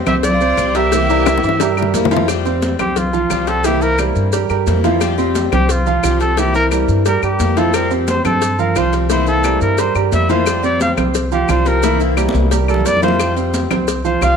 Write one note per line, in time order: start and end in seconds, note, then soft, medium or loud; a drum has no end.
0.00 0.24 G3 medium
0.00 0.24 C4 medium
0.00 0.24 G4 medium
0.06 0.54 C2 medium
0.06 0.35 C4 medium
0.06 0.15 G4 medium
0.06 0.35 C5 medium
0.06 0.15 E5 medium
0.06 cowbell medium
0.06 high conga soft
0.06 low conga medium
0.06 claves medium
0.06 maracas soft
0.23 0.72 F4 medium
0.23 0.77 D5 loud
0.23 muted steel-string acoustic guitar stroke medium
0.23 cowbell loud
0.23 high conga soft
0.23 low conga medium
0.23 maracas medium
0.41 0.69 C4 medium
0.41 0.69 C5 medium
0.41 high conga soft
0.41 maracas soft
0.57 1.37 C2 loud
0.57 0.74 F3 medium
0.57 0.74 G3 medium
0.57 0.74 C4 medium
0.57 0.73 G4 medium
0.57 cowbell medium
0.57 high conga soft
0.57 claves medium
0.57 maracas medium
0.75 0.89 G3 medium
0.75 0.92 G3 medium
0.75 0.92 C4 medium
0.75 0.91 G4 medium
0.75 1.94 G4 medium
0.75 0.89 G4 medium
0.75 0.89 A#4 medium
0.75 1.95 E5 loud
0.75 cowbell medium
0.75 maracas soft
0.92 1.08 C3 medium
0.92 1.06 E3 medium
0.92 1.08 E3 medium
0.92 1.09 A#3 medium
0.92 1.09 C4 medium
0.92 1.06 E4 medium
0.92 1.08 E4 loud
0.92 1.06 E5 medium
0.92 cowbell loud
0.92 high conga soft
0.92 maracas medium
1.09 1.60 E3 medium
1.09 1.37 G3 medium
1.09 1.60 A#3 medium
1.09 1.60 C4 medium
1.09 1.60 E4 medium
1.09 1.37 G4 medium
1.09 1.37 A#4 medium
1.09 high conga soft
1.09 maracas soft
1.26 cowbell medium
1.26 high bongo loud
1.26 high conga medium
1.26 claves medium
1.26 maracas medium
1.37 high bongo medium
1.43 1.91 G2 medium
1.43 1.57 E3 medium
1.43 1.57 E4 medium
1.43 1.58 E5 medium
1.43 maracas soft
1.49 high bongo medium
1.60 1.74 G3 medium
1.60 1.74 G4 medium
1.60 1.75 A#4 medium
1.60 muted steel-string acoustic guitar stroke medium
1.60 cowbell loud
1.60 high bongo medium
1.60 maracas medium
1.77 2.05 G3 medium
1.77 2.05 G4 medium
1.77 2.06 A#4 medium
1.77 high conga soft
1.77 claves medium
1.77 maracas soft
1.82 low bongo medium
1.94 2.74 F2 medium
1.94 2.11 E3 medium
1.94 2.11 A#3 medium
1.94 2.10 C4 medium
1.94 2.10 E4 medium
1.94 cowbell medium
1.94 high conga medium
1.94 maracas medium
2.05 low bongo loud
2.11 2.27 E3 medium
2.11 2.25 F3 medium
2.11 2.28 A#3 medium
2.11 2.28 C4 medium
2.11 2.28 E4 medium
2.11 2.25 F4 loud
2.11 2.26 F5 loud
2.11 cowbell medium
2.11 high conga medium
2.11 maracas soft
2.16 low bongo loud
2.28 2.44 F3 medium
2.28 2.45 G3 medium
2.28 2.45 C4 medium
2.28 2.44 G4 medium
2.28 cowbell loud
2.28 high conga soft
2.28 claves medium
2.28 maracas medium
2.45 2.97 G3 medium
2.45 2.73 C4 medium
2.45 2.97 C4 medium
2.45 2.97 G4 medium
2.45 2.74 C5 medium
2.45 high conga soft
2.45 maracas soft
2.62 cowbell medium
2.62 high conga medium
2.62 maracas medium
2.79 3.27 C2 medium
2.79 3.07 C4 medium
2.79 2.99 G4 medium
2.79 3.08 C5 medium
2.79 cowbell medium
2.79 high conga soft
2.79 low conga medium
2.79 claves medium
2.79 maracas soft
2.96 3.50 F4 medium
2.96 muted steel-string acoustic guitar stroke medium
2.96 cowbell loud
2.96 high conga soft
2.96 low conga medium
2.96 maracas medium
3.13 3.27 F3 medium
3.13 3.28 F4 medium
3.13 3.28 F5 medium
3.13 high conga soft
3.13 maracas soft
3.30 4.10 C2 medium
3.30 3.58 F3 medium
3.30 3.47 F3 medium
3.30 3.47 G3 medium
3.30 3.47 C4 medium
3.30 3.59 F4 medium
3.30 3.46 G4 medium
3.30 3.59 F5 medium
3.30 cowbell medium
3.30 high conga soft
3.30 claves medium
3.30 maracas medium
3.47 3.65 G3 medium
3.47 3.64 C4 medium
3.47 3.64 G4 medium
3.47 3.67 A4 medium
3.47 cowbell medium
3.47 maracas soft
3.64 3.81 C3 medium
3.64 3.92 E3 medium
3.64 3.81 E3 medium
3.64 3.82 A#3 medium
3.64 3.81 C4 medium
3.64 3.93 E4 medium
3.64 3.81 E4 medium
3.64 3.84 G4 medium
3.64 3.93 E5 medium
3.64 cowbell loud
3.64 high conga soft
3.64 maracas medium
3.82 4.33 E3 medium
3.82 4.33 A#3 medium
3.82 4.34 C4 medium
3.82 4.32 E4 medium
3.82 3.99 A#4 loud
3.82 high conga soft
3.82 maracas soft
3.98 4.27 G3 medium
3.98 4.27 G4 medium
3.98 4.27 A#4 medium
3.98 cowbell medium
3.98 high conga medium
3.98 claves medium
3.98 maracas medium
4.16 4.47 G2 medium
4.16 high conga soft
4.16 maracas soft
4.32 4.47 G3 medium
4.32 4.47 G4 medium
4.32 4.47 A#4 medium
4.32 muted steel-string acoustic guitar stroke medium
4.32 cowbell loud
4.32 high conga soft
4.32 maracas medium
4.50 4.66 G2 medium
4.50 4.78 G3 medium
4.50 4.78 G4 medium
4.50 4.78 A#4 medium
4.50 high conga soft
4.50 claves medium
4.50 maracas soft
4.67 5.46 F2 medium
4.67 4.83 E3 medium
4.67 4.84 A#3 medium
4.67 4.83 C4 medium
4.67 4.83 E4 medium
4.67 cowbell medium
4.67 high conga medium
4.67 maracas medium
4.84 5.00 E3 medium
4.84 5.12 F3 medium
4.84 5.01 A#3 medium
4.84 5.01 C4 medium
4.84 5.00 E4 medium
4.84 5.12 F4 medium
4.84 5.12 F5 medium
4.84 cowbell medium
4.84 high conga medium
4.84 maracas soft
5.01 5.17 F3 medium
5.01 5.18 G3 medium
5.01 5.17 C4 medium
5.01 5.16 G4 medium
5.01 cowbell loud
5.01 high conga soft
5.01 claves medium
5.01 maracas medium
5.18 5.69 G3 medium
5.18 5.46 C4 medium
5.18 5.69 C4 medium
5.18 5.69 G4 medium
5.18 5.46 C5 medium
5.18 high conga soft
5.18 maracas soft
5.35 cowbell medium
5.35 high conga medium
5.35 maracas medium
5.52 6.00 C2 loud
5.52 5.80 C4 medium
5.52 5.72 G4 loud
5.52 5.80 C5 medium
5.52 cowbell medium
5.52 high conga soft
5.52 low conga medium
5.52 claves medium
5.52 maracas soft
5.69 6.20 F4 medium
5.69 muted steel-string acoustic guitar stroke medium
5.69 cowbell loud
5.69 high conga soft
5.69 low conga medium
5.69 maracas medium
5.86 6.00 F3 loud
5.86 6.01 F4 medium
5.86 6.01 F5 medium
5.86 high conga soft
5.86 maracas soft
6.03 6.83 C2 medium
6.03 6.19 F3 medium
6.03 6.31 F3 medium
6.03 6.20 G3 medium
6.03 6.20 C4 medium
6.03 6.32 F4 medium
6.03 6.18 G4 medium
6.03 6.32 F5 medium
6.03 cowbell medium
6.03 high conga soft
6.03 claves medium
6.03 maracas medium
6.20 6.37 G3 medium
6.20 6.37 C4 medium
6.20 6.36 G4 medium
6.20 6.40 A4 loud
6.20 cowbell medium
6.20 maracas soft
6.37 6.53 C3 medium
6.37 6.54 E3 medium
6.37 6.66 E3 medium
6.37 6.54 A#3 medium
6.37 6.53 C4 medium
6.37 6.66 E4 medium
6.37 6.53 E4 medium
6.37 6.55 G4 medium
6.37 6.66 E5 medium
6.37 cowbell loud
6.37 high conga soft
6.37 maracas medium
6.54 7.05 E3 medium
6.54 7.05 A#3 medium
6.54 7.06 C4 medium
6.54 7.05 E4 medium
6.54 6.65 A#4 loud
6.54 high conga soft
6.54 maracas soft
6.71 7.00 G3 medium
6.71 7.00 G4 medium
6.71 7.00 A#4 medium
6.71 cowbell medium
6.71 high conga medium
6.71 claves medium
6.71 maracas medium
6.88 7.20 G2 medium
6.88 high conga soft
6.88 maracas soft
7.06 7.20 G3 medium
7.06 7.20 G4 medium
7.06 7.20 A#4 medium
7.06 7.23 A#4 medium
7.06 muted steel-string acoustic guitar stroke medium
7.06 cowbell loud
7.06 high conga soft
7.06 maracas medium
7.22 7.38 G2 medium
7.22 7.51 G3 medium
7.22 7.51 G4 medium
7.22 7.59 G4 medium
7.22 7.51 A#4 medium
7.22 high conga soft
7.22 claves medium
7.22 maracas soft
7.39 8.19 F2 loud
7.39 7.56 E3 medium
7.39 7.56 A#3 medium
7.39 7.56 C4 medium
7.39 7.55 E4 medium
7.39 cowbell medium
7.39 high conga medium
7.39 maracas medium
7.57 7.74 E3 medium
7.57 7.85 F3 medium
7.57 7.74 A#3 medium
7.57 7.73 C4 medium
7.57 7.73 E4 medium
7.57 7.85 F4 loud
7.57 7.76 A4 medium
7.57 7.85 F5 medium
7.57 cowbell medium
7.57 high conga medium
7.57 maracas soft
7.74 7.90 F3 medium
7.74 7.91 G3 medium
7.74 7.90 C4 medium
7.74 7.90 G4 medium
7.74 7.91 A#4 medium
7.74 cowbell loud
7.74 high conga soft
7.74 claves medium
7.74 maracas medium
7.91 8.42 G3 medium
7.91 8.19 C4 medium
7.91 8.42 C4 medium
7.91 8.42 G4 medium
7.91 8.19 C5 medium
7.91 high conga soft
7.91 maracas soft
8.08 8.24 C5 medium
8.08 cowbell medium
8.08 high conga loud
8.08 maracas medium
8.25 8.72 G2 medium
8.25 8.53 C4 medium
8.25 8.61 A4 loud
8.25 8.53 C5 medium
8.25 cowbell medium
8.25 high conga soft
8.25 low conga medium
8.25 claves medium
8.25 maracas soft
8.42 muted steel-string acoustic guitar stroke medium
8.42 cowbell loud
8.42 high conga soft
8.42 maracas medium
8.59 8.73 F3 medium
8.59 8.73 F4 medium
8.59 8.79 A#4 medium
8.59 8.73 F5 medium
8.59 high conga soft
8.59 maracas soft
8.76 9.56 C2 medium
8.76 8.92 F3 medium
8.76 9.04 F3 medium
8.76 8.93 G3 medium
8.76 8.92 C4 medium
8.76 9.04 F4 medium
8.76 8.91 G4 medium
8.76 8.94 C5 medium
8.76 9.04 F5 medium
8.76 cowbell medium
8.76 high conga soft
8.76 claves medium
8.76 maracas medium
8.92 9.10 G3 medium
8.92 9.10 C4 medium
8.92 9.09 G4 medium
8.92 cowbell medium
8.92 maracas soft
9.09 9.26 C3 medium
9.09 9.26 E3 medium
9.09 9.38 E3 medium
9.09 9.26 A#3 medium
9.09 9.26 C4 medium
9.09 9.38 E4 medium
9.09 9.25 E4 medium
9.09 9.27 C5 medium
9.09 9.38 E5 medium
9.09 cowbell loud
9.09 high conga soft
9.09 maracas medium
9.26 9.77 E3 medium
9.26 9.77 A#3 medium
9.26 9.78 C4 medium
9.26 9.77 E4 medium
9.26 9.59 A4 loud
9.26 high conga soft
9.26 maracas soft
9.44 9.72 G3 medium
9.44 9.73 G4 medium
9.44 9.73 A#4 medium
9.44 cowbell medium
9.44 high conga medium
9.44 claves medium
9.44 maracas medium
9.61 9.93 G2 medium
9.61 9.81 A#4 medium
9.61 high conga soft
9.61 maracas soft
9.78 9.93 G3 medium
9.78 9.93 G4 medium
9.78 9.93 A#4 medium
9.78 9.96 C5 medium
9.78 muted steel-string acoustic guitar stroke medium
9.78 cowbell loud
9.78 high conga soft
9.78 maracas medium
9.95 10.11 G2 medium
9.95 10.23 G3 medium
9.95 10.24 G4 medium
9.95 10.24 A#4 medium
9.95 high conga soft
9.95 claves medium
9.95 maracas soft
10.12 10.92 F2 medium
10.12 10.29 E3 medium
10.12 10.29 A#3 medium
10.12 10.28 C4 medium
10.12 10.28 E4 medium
10.12 10.29 E5 loud
10.12 cowbell medium
10.12 high conga medium
10.12 maracas medium
10.29 10.45 E3 medium
10.29 10.58 F3 medium
10.29 10.46 A#3 medium
10.29 10.46 C4 medium
10.29 10.46 E4 medium
10.29 10.58 F4 loud
10.29 10.62 C5 medium
10.29 10.58 F5 loud
10.29 cowbell medium
10.29 high conga medium
10.29 maracas soft
10.46 10.63 F3 medium
10.46 10.63 G3 medium
10.46 10.62 C4 medium
10.46 10.61 G4 medium
10.46 cowbell loud
10.46 high conga soft
10.46 claves medium
10.46 maracas medium
10.63 11.14 G3 medium
10.63 10.92 C4 medium
10.63 11.14 C4 medium
10.63 11.15 G4 medium
10.63 10.92 C5 medium
10.63 10.80 D5 medium
10.63 high conga soft
10.63 maracas soft
10.81 10.92 F5 medium
10.81 cowbell medium
10.81 high conga loud
10.81 maracas medium
10.97 11.45 C2 loud
10.97 11.26 C4 medium
10.97 11.26 C5 medium
10.97 cowbell medium
10.97 high conga soft
10.97 low conga medium
10.97 claves medium
10.97 maracas soft
11.14 muted steel-string acoustic guitar stroke medium
11.14 cowbell loud
11.14 high conga soft
11.14 maracas medium
11.32 11.46 F3 medium
11.32 11.46 F4 medium
11.32 11.52 G4 medium
11.32 11.46 F5 medium
11.32 high conga soft
11.32 maracas soft
11.49 12.29 C2 loud
11.49 11.65 F3 medium
11.49 11.77 F3 medium
11.49 11.65 G3 medium
11.49 11.65 C4 medium
11.49 11.77 F4 medium
11.49 11.64 G4 medium
11.49 11.69 C5 loud
11.49 11.77 F5 medium
11.49 cowbell medium
11.49 claves medium
11.49 maracas medium
11.65 11.83 G3 medium
11.65 11.83 C4 medium
11.65 11.82 G4 medium
11.65 12.01 A#4 medium
11.65 cowbell medium
11.65 maracas soft
11.82 11.99 C3 medium
11.82 11.99 E3 medium
11.82 12.11 E3 medium
11.82 12.00 A#3 medium
11.82 11.99 C4 medium
11.82 12.11 E4 medium
11.82 11.98 E4 medium
11.82 12.11 E5 medium
11.82 cowbell loud
11.82 high conga soft
11.82 maracas medium
12.00 12.50 E3 medium
12.00 12.50 A#3 medium
12.00 12.51 C4 medium
12.00 12.50 E4 medium
12.00 high conga soft
12.00 maracas soft
12.17 12.45 G3 medium
12.17 12.45 G4 medium
12.17 12.46 A#4 medium
12.17 cowbell medium
12.17 high conga medium
12.17 claves medium
12.17 maracas medium
12.29 high conga loud
12.34 12.82 C2 loud
12.34 maracas soft
12.40 high conga medium
12.51 12.65 G3 medium
12.51 12.66 G4 medium
12.51 12.66 A#4 medium
12.51 muted steel-string acoustic guitar stroke medium
12.51 cowbell loud
12.51 maracas medium
12.68 12.96 G3 medium
12.68 12.96 G4 medium
12.68 12.88 A4 medium
12.68 12.97 A#4 medium
12.68 claves medium
12.68 maracas soft
12.74 low conga medium
12.85 13.65 F2 medium
12.85 13.02 E3 medium
12.85 13.02 A#3 medium
12.85 13.01 C4 medium
12.85 13.01 E4 medium
12.85 13.03 D5 loud
12.85 cowbell medium
12.85 maracas medium
12.97 low conga medium
13.02 13.18 E3 medium
13.02 13.31 F3 medium
13.02 13.19 A#3 medium
13.02 13.19 C4 medium
13.02 13.19 E4 medium
13.02 13.31 F4 medium
13.02 13.35 C5 medium
13.02 13.31 F5 medium
13.02 cowbell medium
13.02 maracas soft
13.08 low conga medium
13.19 13.36 F3 medium
13.19 13.36 G3 medium
13.19 13.36 C4 medium
13.19 13.35 G4 medium
13.19 cowbell loud
13.19 claves medium
13.19 maracas medium
13.36 13.88 G3 medium
13.36 13.65 C4 medium
13.36 13.88 C4 medium
13.36 13.88 G4 medium
13.36 13.65 C5 medium
13.36 high conga soft
13.36 maracas soft
13.54 cowbell medium
13.54 high conga medium
13.54 maracas medium
13.70 14.18 C2 medium
13.70 13.99 C4 medium
13.70 13.99 C5 medium
13.70 cowbell medium
13.70 high conga soft
13.70 low conga medium
13.70 claves medium
13.70 maracas soft
13.88 muted steel-string acoustic guitar stroke medium
13.88 cowbell loud
13.88 high conga soft
13.88 maracas medium
14.04 14.19 F3 medium
14.04 14.19 F4 medium
14.04 14.25 C5 medium
14.04 14.19 F5 medium
14.04 high conga soft
14.04 maracas soft
14.21 14.37 C2 loud
14.21 14.37 F3 medium
14.21 14.37 G3 medium
14.21 14.37 C4 medium
14.21 14.37 F4 medium
14.21 14.37 G4 medium
14.21 14.37 F5 medium
14.21 14.37 F5 loud
14.21 cowbell medium
14.21 high conga soft
14.21 claves medium
14.21 maracas medium